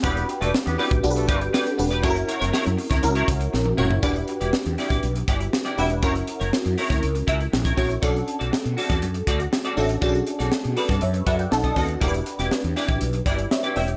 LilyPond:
<<
  \new Staff \with { instrumentName = "Clean electric guitar" } { \time 4/4 \key e \dorian \tempo 4 = 120 <g' b' d''>16 r8 <g' b' d''>16 r8 <g' b' d''>16 r8. <g' b' d''>16 r16 <g' b' d''>16 r8 <g' b' d''>16 | <e' ais' cis''>16 r16 <e' ais' cis''>16 <e' ais' cis''>16 <e' ais' cis''>16 r8 <e' ais' cis''>16 r16 <e' ais' cis''>16 r4 <e' ais' cis''>16 r16 | <e' g' d''>16 r8 <e' g' d''>16 r8 <e' g' d''>16 <e' g' d''>16 r8 <e' g' d''>16 r8 <e' g' d''>16 <e' g' e''>16 r16 | <e' ais' cis''>16 r8 <e' ais' cis''>16 r8 <e' ais' cis''>16 <e' ais' cis''>16 r8 <e' ais' e''>16 r8 <e' ais' cis''>16 <e' ais' cis''>16 r16 |
<fis' a' d''>16 r8 <fis' a' d''>16 r8 <fis' a' d''>16 <fis' a' d''>16 r8 <fis' a' d''>16 r8 <fis' a' d''>16 <fis' a' e''>16 r16 | <fis' a' d''>16 r8 <fis' a' d''>16 r8 <fis' a' d''>16 <fis' a' d''>16 r8 <fis' a' e''>16 r8 <fis' a' dis''>16 <fis' a' dis''>16 r16 | <e' g' d''>16 r8 <e' g' d''>16 r8 <e' g' d''>16 <e' g' d''>16 r8 <e' g' d''>16 r8 <e' g' d''>16 <e' g' e''>16 r16 | }
  \new Staff \with { instrumentName = "FM electric piano" } { \time 4/4 \key e \dorian << { r1 | r1 | r1 | r1 |
r1 | r4. b'8 <cis'' e''>8 <b' d'' fis''>16 g''16 a''4 | r2 r8 <b' d''>8 <cis'' e''>8 <e'' g''>8 | } \\ { <d' fis' g' b'>4. r8 <d' fis' g' a' b'>4 r8 <d' fis' g' b'>8 | <cis' e' fis' a' ais'>4. r8 <cis' e' fis' ais'>4 r8 <cis' e' fis' cis''>8 | <d' fis' g' b'>4. r2 <d' fis' g' b'>8 | <cis' e' fis' ais'>4. r2 <cis' e' fis' cis''>8 |
<cis' d' fis' a'>4. r2 <cis' d' fis' a'>8 | <cis' d' fis' gis' a'>4. r4. <cis' dis' fis' a'>8 <cis' dis' fis' a'>8 | <d' fis' g' ais' b'>4. r2 r8 | } >> }
  \new Staff \with { instrumentName = "Horn section" } { \time 4/4 \key e \dorian <b e' g' b'>8 r16 <a d' fis' a'>16 r16 <b e' g' b'>16 <b e' g' b'>16 r8 <a d' fis' a'>16 <b e' g' b'>16 r4 r16 | r1 | r1 | r1 |
r1 | r1 | r1 | }
  \new Staff \with { instrumentName = "Fretless electric bass" } { \clef bass \time 4/4 \key e \dorian e,,8 r16 e,,16 r16 e,16 r16 a,,16 b,,8 g,,8 r8 e,,8 | fis,,8 r16 fis,,16 r16 fis,16 r16 d,16 cis,8 cis,8 ais,,8 fis,,8 | e,,8 r16 e,,16 r16 e,16 r16 a,,16 b,,8 g,,8 r8 e,,8 | fis,,8 r16 fis,,16 r16 fis,16 r16 d,16 cis,8 cis,8 ais,,8 ais,,8 |
b,,8 r16 b,,16 r16 b,16 r16 e,16 fis,8 d,8 r8 a,,8 | b,,8 r16 b,,16 r16 b,16 r16 g,16 fis,8 fis,8 b,,8 dis,8 | e,,8 r16 e,,16 r16 e,16 r16 a,,16 b,,8 g,,8 r8 e,,8 | }
  \new DrumStaff \with { instrumentName = "Drums" } \drummode { \time 4/4 <hh bd>16 hh16 hh16 hh16 sn16 hh16 hho16 <hh bd>16 hh16 hh16 <hh bd>16 hh16 sn16 hh16 hho16 hh16 | <hh bd>16 hh16 hh16 <hh sn>16 sn16 hh16 hho16 <hh bd sn>16 hh16 hh16 <hh bd>16 hh16 sn16 tommh16 toml16 tomfh16 | <hh bd>16 hh16 hh16 hh16 sn16 hh16 <hho sn>16 <hh bd sn>16 hh16 hh16 <hh bd>16 hh16 sn16 hh16 hho16 hh16 | <hh bd>16 hh16 hh16 hh16 sn16 hh16 hho16 <hh bd sn>16 hh16 hh16 <hh bd>16 hh16 sn16 <hh bd>16 <hho bd>16 hh16 |
<hh bd>16 hh16 hh16 hh16 sn16 hh16 <hho sn>16 <hh bd sn>16 hh16 hh16 <hh bd>16 hh16 sn16 hh16 hho16 hh16 | <hh bd>16 hh16 hh16 <hh sn>16 sn16 hh16 hho16 <hh bd sn>16 hh16 hh16 <hh bd>16 hh16 sn16 <hh bd>16 <hho bd>16 hh16 | <hh bd>16 hh16 hh16 <hh sn>16 sn16 hh16 <hho sn>16 <hh bd>16 hh16 hh16 <hh bd>16 hh16 sn16 hh16 hho16 hh16 | }
>>